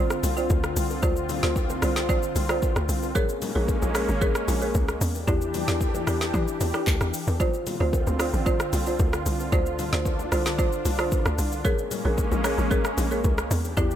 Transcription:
Already playing: D3 C4 F4 C5 D5
0.10 cross-stick, shaker
0.23 C2, open hi-hat, low bongo, shaker
0.37 F4 C5 D5, shaker
0.50 D2, kick, high bongo, shaker
0.64 cross-stick, shaker
0.76 C2, open hi-hat, shaker
0.90 high bongo, shaker
1.03 D2 F4 C5 D5, kick, low conga, shaker
1.16 shaker
1.29 open hi-hat, low bongo, low conga, shaker
1.43 D2 F4 C5 D5, snare
1.56 kick, high bongo, shaker
1.70 high bongo, low bongo, shaker
1.82 C2 F4 C5 D5, cross-stick, open hi-hat, shaker
1.96 snare, shaker
2.09 F4 C5 D5, kick, low conga, shaker
2.23 shaker
2.36 C2, open hi-hat, low bongo, shaker
2.49 F4 C5 D5, cross-stick, shaker
2.62 kick, high bongo, shaker
2.76 D2, cross-stick, shaker
2.89 C2, open hi-hat, shaker
3.03 high bongo, shaker
3.15 G#3 A#3 C#4 G#4 A#4 C#5, kick, low conga, shaker
3.29 shaker
3.42 open hi-hat, low bongo, low conga, shaker
3.55 A#1 G#4 A#4 C#5
3.68 kick, high bongo, shaker
3.82 A#1, high bongo, low bongo, shaker
3.95 G#4 A#4 C#5, cross-stick, open hi-hat, shaker
4.09 G#1, shaker
4.21 G#4 A#4 C#5, kick, low conga, shaker
4.35 cross-stick, shaker
4.48 A#1, open hi-hat, low bongo, shaker
4.62 G#4 A#4 C#5, shaker
4.75 C#2, kick, high bongo, shaker
4.88 cross-stick, shaker
5.01 E2 E3 D4 G4, open hi-hat, shaker
5.15 high bongo, shaker
5.27 E2 E4 G4 D5, kick, low conga, shaker
5.42 shaker
5.54 open hi-hat, low bongo, low conga, shaker
5.68 E2 E4 G4 D5, snare, shaker
5.81 kick, high bongo, shaker
5.95 high bongo, low bongo, shaker
6.07 E2 E4 G4 D5, cross-stick, open hi-hat, shaker
6.21 snare, shaker
6.34 E3 E4 G4 D5, kick, low conga, shaker
6.48 shaker
6.61 E2, open hi-hat, low bongo, shaker
6.74 E4 G4 D5, cross-stick, shaker
6.87 D2, kick, clap, high bongo, shaker
7.01 E2, cross-stick, shaker
7.14 open hi-hat, shaker
7.27 E2, high bongo, shaker
7.40 D3 C4 F4 C5 D5, kick, low conga, shaker
7.54 shaker
7.67 open hi-hat, low bongo, low conga, shaker
7.80 D2 F4 C5 D5
7.93 kick, high bongo, shaker
8.07 D2, high bongo, low bongo, shaker
8.19 F4 C5 D5, cross-stick, open hi-hat, shaker
8.33 A1, shaker
8.46 F4 C5 D5, kick, low conga, shaker
8.60 cross-stick, shaker
8.73 C2, open hi-hat, low bongo, shaker
8.86 F4 C5 D5, shaker
8.99 D2, kick, high bongo, shaker
9.13 cross-stick, shaker
9.26 C2, open hi-hat, shaker
9.40 high bongo, shaker
9.52 D2 D4 F4 C5 D5, kick, low conga, shaker
9.66 shaker
9.79 open hi-hat, low bongo, low conga, shaker
9.93 D2 F4 C5 D5, snare
10.05 kick, high bongo, shaker
10.19 high bongo, low bongo, shaker
10.32 C2 F4 C5 D5, cross-stick, open hi-hat, shaker
10.46 snare, shaker
10.58 F4 C5 D5, kick, low conga, shaker
10.73 shaker
10.85 C2, open hi-hat, low bongo, shaker
10.99 F4 C5 D5, cross-stick, shaker
11.12 kick, high bongo, shaker
11.26 D2, cross-stick, shaker
11.38 C2, open hi-hat, shaker
11.52 high bongo, shaker
11.65 G#3 A#3 C#4 G#4 A#4 C#5, kick, low conga, shaker
11.79 shaker
11.91 open hi-hat, low bongo, low conga, shaker
12.05 A#1 G#4 A#4 C#5
12.18 kick, high bongo, shaker
12.32 A#1, high bongo, low bongo, shaker
12.44 G#4 A#4 C#5, cross-stick, open hi-hat, shaker
12.58 A1, shaker
12.71 G#4 A#4 C#5, kick, low conga, shaker
12.85 cross-stick, shaker
12.98 A#1, open hi-hat, low bongo, shaker
13.11 G#4 A#4 C#5, shaker
13.24 C#2, kick, high bongo, shaker
13.38 cross-stick, shaker
13.51 E2 E3 D4 G4, open hi-hat, shaker
13.65 high bongo, shaker
13.77 E2 E4 G4 D5, kick, low conga, shaker
13.91 shaker

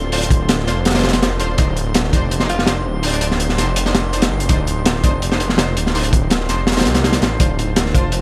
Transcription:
Already playing: D1 C6
0.12 D4 F4 C5, open hi-hat
0.22 closed hi-hat
0.31 kick, closed hi-hat
0.49 snare, closed hi-hat
0.59 snare
0.67 F1 C4 D4 F4 A4 C5, snare, closed hi-hat
0.85 F1, snare, closed hi-hat
0.90 snare, closed hi-hat
0.95 D4 F4 C5, snare, closed hi-hat
0.99 snare, closed hi-hat
1.03 snare, closed hi-hat
1.09 snare, closed hi-hat
1.13 snare, closed hi-hat
1.22 snare, closed hi-hat
1.40 D#1 D4 F4 C5, closed hi-hat
1.58 D1 D4 D#4 C5, kick, closed hi-hat
1.77 closed hi-hat
1.94 snare, closed hi-hat
2.04 snare
2.13 F1 C4 D4 D#4 G4 C5, kick, closed hi-hat
2.31 closed hi-hat
2.40 D4 D#4 C5, snare
2.49 F4, closed hi-hat
2.59 snare
2.67 D4 D#4 C5, snare, closed hi-hat
2.86 D1
3.03 D4 D#4 C5, open hi-hat
3.13 D4, closed hi-hat
3.21 D4, closed hi-hat
3.31 snare
3.40 closed hi-hat
3.49 snare
3.58 F1 C4 D4 D#4 G4 C5, snare, closed hi-hat
3.76 closed hi-hat
3.86 D4 D#4 C5, snare
3.95 snare, closed hi-hat
4.13 D4 D#4 C5, closed hi-hat
4.22 snare, closed hi-hat
4.31 G1
4.40 F1, closed hi-hat
4.49 D1 D4 D#4 C5, kick, closed hi-hat
4.67 closed hi-hat
4.86 snare, closed hi-hat
4.96 snare
5.04 F1 C4 D4 D#4 G4 C5, kick, closed hi-hat
5.22 closed hi-hat
5.31 D4 D#4 C5, snare
5.40 closed hi-hat
5.49 snare
5.58 D4 D#4 C5, snare, closed hi-hat
5.76 D1, closed hi-hat
5.87 snare
5.95 D4 D#4 C5, open hi-hat
6.04 closed hi-hat
6.13 kick, closed hi-hat
6.30 snare, closed hi-hat
6.40 snare
6.49 F1 C4 D4 D#4 G4 C5, snare, closed hi-hat
6.67 snare, closed hi-hat
6.72 snare, closed hi-hat
6.77 D4 D#4 C5, snare, closed hi-hat
6.80 snare, closed hi-hat
6.85 C2, snare, closed hi-hat
6.95 snare, closed hi-hat
7.04 D4 D#4 C5, snare, closed hi-hat
7.12 snare, closed hi-hat
7.22 A1, snare, closed hi-hat
7.40 D1 D4 F4 C5 A5, kick, closed hi-hat
7.59 closed hi-hat
7.76 snare, closed hi-hat
7.86 snare
7.94 F1 C4 D4 F4 A4 C5, kick, closed hi-hat
8.12 closed hi-hat

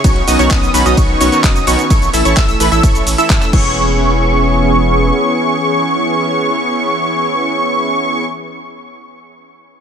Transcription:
Already playing: C#4
0.04 B1 D#3 B3 C#4 D#4 F#4 C#5 C#6, kick, closed hi-hat, ride, shaker
0.16 closed hi-hat
0.28 B1 B3 C#4 D#4 F#4 D#5 D#6, open hi-hat, shaker
0.39 B1 B3 C#4 D#4 F#4 C#5 C#6, closed hi-hat, shaker
0.51 B1 D#6, kick, clap, closed hi-hat, ride, shaker
0.63 shaker
0.74 B1 B3 C#4 D#4 F#4 B4 B5, open hi-hat, shaker
0.86 B1 B3 C#4 D#4 F#4 D#5 D#6, closed hi-hat, shaker
0.97 B1 B3 C#4 D#4 F#4 C#5 C#6, kick, closed hi-hat, ride, shaker
1.21 B1 B3 C#4 D#4 F#4 C#5 C#6, open hi-hat, shaker
1.32 B3 C#4 D#4 F#4 C#5 C#6, closed hi-hat, shaker
1.44 F#1 B3 C#4 D#4 F#4 D#5 D#6, kick, clap, closed hi-hat, ride, shaker
1.56 closed hi-hat, shaker
1.67 B1 B3 C#4 D#4 F#4 C#5 C#6, open hi-hat, shaker
1.79 closed hi-hat, shaker
1.90 A1 E3 A3 E4 A4 C#5 C#6, kick, closed hi-hat, ride, shaker
2.02 closed hi-hat, shaker
2.14 A1 E4 A4 E5 E6, open hi-hat, shaker
2.25 A1 E4 A4 C#5 C#6, closed hi-hat, shaker
2.37 A1 E4 A4 E5 E6, kick, clap, closed hi-hat, ride, shaker
2.49 closed hi-hat, shaker
2.60 A1 E4 A4 B4 B5, open hi-hat, shaker
2.72 A1 E4 A4 E5 E6, closed hi-hat, shaker
2.83 A1 E4 C#5 C#6, kick, closed hi-hat, ride, shaker
2.95 closed hi-hat, shaker
3.07 A1, open hi-hat, shaker
3.18 E4 A4 E5 E6, closed hi-hat, shaker
3.30 A1 E4 E6, kick, clap, closed hi-hat, ride, shaker
3.42 clap, closed hi-hat, shaker
3.53 E1 E3 B3 C#4 E4 G#4 C#5 C#6, kick, crash

